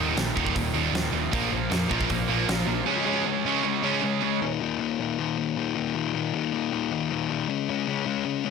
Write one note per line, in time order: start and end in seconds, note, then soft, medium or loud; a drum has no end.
0.00 0.11 D#1 medium
0.00 0.15 D#2 medium
0.00 0.16 A#2 medium
0.00 0.16 D#3 medium
0.16 0.30 A#1 medium
0.16 0.34 D#2 medium
0.16 0.35 A#2 medium
0.16 0.36 D#3 loud
0.16 snare medium
0.16 open hi-hat medium
0.36 0.51 D#1 medium
0.36 0.54 D#2 medium
0.36 0.54 A#2 loud
0.36 0.55 D#3 loud
0.36 kick medium
0.47 kick medium
0.55 0.70 D#1 medium
0.55 0.72 D#2 medium
0.55 0.73 A#2 medium
0.55 0.73 D#3 medium
0.55 kick loud
0.55 open hi-hat medium
0.74 0.88 D#1 medium
0.74 0.93 D#2 medium
0.74 0.93 A#2 loud
0.74 0.93 D#3 loud
0.93 1.07 D#1 medium
0.93 1.12 D#2 medium
0.93 1.12 A#2 medium
0.93 1.14 D#3 loud
0.93 snare medium
0.93 open hi-hat soft
1.13 1.27 D#1 medium
1.13 1.31 D#2 medium
1.13 1.32 A#2 medium
1.13 1.33 D#3 medium
1.33 1.47 A#1 loud
1.33 1.51 A#2 loud
1.33 1.51 F3 medium
1.33 1.51 A#3 loud
1.33 kick loud
1.33 open hi-hat medium
1.52 1.66 A#1 medium
1.52 1.70 A#2 medium
1.52 1.70 F3 medium
1.52 1.70 A#3 medium
1.71 1.85 F2 medium
1.71 1.89 A#2 medium
1.71 1.89 F3 medium
1.71 1.90 A#3 loud
1.71 snare loud
1.71 open hi-hat soft
1.91 2.04 A#1 loud
1.91 2.09 A#2 medium
1.91 2.09 F3 loud
1.91 2.09 A#3 medium
1.91 kick medium
2.01 kick medium
2.10 2.24 A#1 medium
2.10 2.27 A#2 medium
2.10 2.28 F3 medium
2.10 2.28 A#3 loud
2.10 kick medium
2.10 open hi-hat medium
2.29 2.43 A#1 medium
2.29 2.48 A#2 loud
2.29 2.48 F3 medium
2.29 2.48 A#3 loud
2.49 2.62 A#1 medium
2.49 2.66 A#2 medium
2.49 2.66 F3 medium
2.49 2.66 A#3 loud
2.49 snare loud
2.49 open hi-hat medium
2.67 2.81 A#1 loud
2.67 2.85 A#2 medium
2.67 2.85 F3 medium
2.67 2.85 A#3 loud
2.87 3.04 C#3 medium
2.87 3.05 G#3 medium
2.87 3.05 C#4 loud
3.05 3.24 C#3 medium
3.05 3.24 G#3 medium
3.05 3.24 C#4 medium
3.25 3.43 C#3 medium
3.25 3.43 G#3 medium
3.25 3.45 C#4 loud
3.45 3.62 C#3 medium
3.45 3.63 G#3 medium
3.45 3.63 C#4 medium
3.63 3.81 C#3 medium
3.63 3.81 G#3 medium
3.63 3.83 C#4 loud
3.83 4.01 C#3 loud
3.83 4.01 G#3 medium
3.83 4.02 C#4 loud
4.02 4.20 C#3 medium
4.02 4.20 G#3 medium
4.02 4.22 C#4 loud
4.22 4.39 C#3 medium
4.22 4.40 G#3 medium
4.22 4.40 C#4 loud
4.42 4.61 D#2 loud
4.42 4.60 A#2 loud
4.42 4.62 D#3 loud
4.61 4.79 D#2 medium
4.61 4.79 A#2 medium
4.61 4.80 D#3 medium
4.79 5.00 D#2 medium
4.79 4.99 A#2 loud
4.79 5.00 D#3 medium
5.00 5.18 D#2 medium
5.00 5.18 A#2 medium
5.00 5.18 D#3 loud
5.19 5.37 D#2 loud
5.19 5.37 A#2 loud
5.19 5.37 D#3 loud
5.38 5.56 D#2 medium
5.38 5.57 A#2 medium
5.38 5.57 D#3 medium
5.57 5.74 D#2 medium
5.57 5.74 A#2 medium
5.57 5.75 D#3 loud
5.75 5.93 D#2 medium
5.75 5.94 A#2 loud
5.75 5.94 D#3 medium
5.95 6.13 D#2 loud
5.95 6.13 A#2 loud
5.95 6.14 D#3 loud
6.14 6.33 D#2 loud
6.14 6.34 A#2 medium
6.14 6.33 D#3 loud
6.34 6.51 D#2 medium
6.34 6.52 A#2 medium
6.34 6.52 D#3 loud
6.53 6.71 D#2 medium
6.53 6.72 A#2 medium
6.53 6.72 D#3 medium
6.73 6.91 D#2 loud
6.73 6.91 A#2 loud
6.73 6.92 D#3 loud
6.92 7.11 D#2 loud
6.92 7.11 A#2 medium
6.92 7.11 D#3 loud
7.12 7.29 D#2 medium
7.12 7.30 A#2 medium
7.12 7.30 D#3 loud
7.30 7.48 D#2 loud
7.30 7.48 A#2 loud
7.30 7.48 D#3 loud
7.49 7.69 C#3 loud
7.49 7.69 G#3 loud
7.49 7.69 C#4 loud
7.69 7.87 C#3 medium
7.69 7.88 G#3 medium
7.69 7.88 C#4 loud
7.87 8.06 C#3 medium
7.87 8.06 G#3 medium
7.87 8.07 C#4 medium
8.06 8.24 C#3 medium
8.06 8.24 G#3 medium
8.06 8.24 C#4 medium
8.25 8.44 C#3 medium
8.25 8.44 G#3 loud
8.25 8.44 C#4 loud
8.45 8.50 C#3 loud
8.45 8.50 G#3 loud
8.45 8.50 C#4 loud